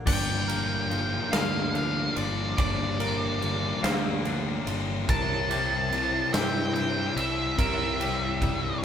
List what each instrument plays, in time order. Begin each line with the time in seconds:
0.06 fingered electric bass G1, distorted electric guitar G2 D3 G3 A#3 D4, analog synth pad D4 G4 A#4 F5, clean electric guitar D5, lead electric guitar G5, kick, crash
0.48 distorted electric guitar G3 A#3 D4, clean electric guitar A#4, ride
0.90 distorted electric guitar D3 G3 A#3 D4, clean electric guitar F3, ride
1.32 fingered electric bass D2, distorted electric guitar G3 A#3 D4, clean electric guitar F5, lead electric guitar F5, snare, ride
1.74 distorted electric guitar D3 G3 A#3 D4, lead electric guitar F5, ride
2.16 fingered electric bass G1, clean electric guitar F3, distorted electric guitar G3 A#3 D4, lead electric guitar D5, ride
2.57 fingered electric bass G1, distorted electric guitar G2 D3 G3 A#3 D4, clean electric guitar D5, lead electric guitar D5, analog synth pad G5, kick, ride
3.00 distorted electric guitar G3 A#3 D4, clean electric guitar A#4, ride
3.41 distorted electric guitar D3 G3 A#3 D4, clean electric guitar F3, ride
3.82 fingered electric bass D2, distorted electric guitar G3 A#3 D4, clean electric guitar F5, snare, ride
4.23 distorted electric guitar D3 G3 A#3 D4, ride
4.65 fingered electric bass G1, clean electric guitar F3, distorted electric guitar G3 A#3 D4, ride
5.07 fingered electric bass C2, distorted electric guitar C3 G3 C4 E4, analog synth pad E4 C5, clean electric guitar A#4, lead electric guitar A5, kick, ride
5.49 distorted electric guitar G3 C4 E4, clean electric guitar A#3 G4, ride
5.91 distorted electric guitar C3 G3 C4 E4, ride
6.33 fingered electric bass G2, distorted electric guitar G3 C4 E4, clean electric guitar A#3 E5, lead electric guitar G5, snare, ride
6.74 distorted electric guitar C3 G3 C4 E4, lead electric guitar G5, ride
7.16 fingered electric bass C2, distorted electric guitar G3 C4 E4, lead electric guitar E5, ride
7.57 fingered electric bass C2, distorted electric guitar C3 G3 C4, clean electric guitar A#4, analog synth pad D5, lead electric guitar E5, kick, ride
7.61 distorted electric guitar E4
8.00 distorted electric guitar G3 C4 E4, clean electric guitar A#3 G4, ride
8.41 distorted electric guitar C3 G3 C4 E4, kick, ride